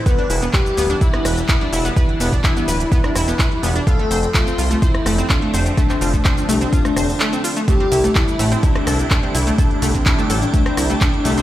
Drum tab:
RD |----------------|----------------|----------------|----------------|
HH |xxoxxxoxxxoxxxox|xxoxxxoxxxoxxxox|xxoxxxoxxxoxxxox|xxoxxxoxxxooxxox|
SH |x-xxxxxxx-xxx-xx|x-xxxxxxx-xxx-xx|x-xxxxxxx-xxx-xx|xxxxxxxxxxxxxxxx|
CP |----x-------x---|----x-------x---|----x-------x---|-x--x-------x---|
SD |---------rr-----|---------rr-----|---------rr-----|---------rr-----|
BD |o---o---o---o---|o--oo---o---o---|o---o---o---o---|o--oo---o-------|

RD |x-x-x-x-x-x-x-x-|x-x-x-x-x-x-x-x-|
HH |xxoxxxoxxxoxxxox|xxoxxxoxxxoxxxox|
SH |x-xxxxxxx-xxx-xx|x-xxxxxxx-xxx-xx|
CP |----x-------x---|----x-------x---|
SD |---------rr-----|---------rr-----|
BD |o---o---o---o---|o--oo---o---o---|